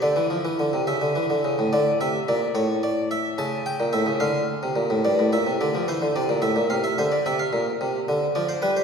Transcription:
0.02 D3 D5
0.16 E3
0.30 F3
0.45 E3
0.59 D3
0.73 C3
0.87 C#3 E5
1.02 D3
1.15 E3
1.30 D3
1.45 C#3
1.59 A2
1.73 D3 D5
2.01 C3 E5
2.28 A#2 D5
2.55 A2 C#5
2.83 D5
3.11 E5
3.38 C#3 A5
3.66 G5
3.80 A#2
3.93 A2 E5
4.06 C#3
4.20 D3 F5
4.63 C3
4.76 A#2
4.90 A2
5.05 G2 D5
5.19 A2
5.33 A#2 E5
5.46 C3
5.61 D3 D5
5.75 F3
5.88 E3 C5
6.02 D3
6.16 C3 D5
6.29 A#2
6.42 A2 E5
6.56 A#2
6.70 C3 F5
6.84 E5
6.98 D3 C5
7.12 D5
7.26 C3 E5
7.39 F5
7.53 A#2
7.81 C3
8.08 D3
8.35 F3 D5
8.49 C5
8.62 G3 B4
8.77 C5

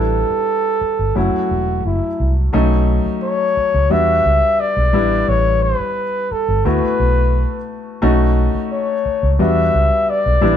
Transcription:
Already playing: A1 G3 B3 D4 E4 A4
0.30 muted fingered electric bass stroke
0.81 muted fingered electric bass stroke
0.99 G1
1.15 F#1 F#3 A3 C#4 E4 F#4
1.34 muted fingered electric bass stroke
1.51 E1
1.85 F#1 E4
2.20 C2
2.53 B1 F#3 A3 C#4 D#4
3.06 muted fingered electric bass stroke
3.23 C#5
3.57 muted fingered electric bass stroke
3.74 C#2
3.90 E2 G3 B3 D4 F#4 E5
4.26 C#2
4.60 D5
4.77 B1
4.93 A1 G3 B3 D4 E4
5.28 A1 C#5
5.63 B4
5.80 muted fingered electric bass stroke
6.31 A4, muted fingered electric bass stroke
6.48 G1
6.65 D2 A3 B3 E4 F#4 B4
6.83 muted fingered electric bass stroke
7.00 B1
8.02 B1 A3 C#4 D#4 F#4
8.55 muted fingered electric bass stroke
8.72 C#5
9.06 muted fingered electric bass stroke
9.23 C#2
9.39 E2 G3 B3 D4 F#4 E5
9.74 C#2
10.10 D5
10.26 B1
10.41 A1 G3 B3 D4 E4

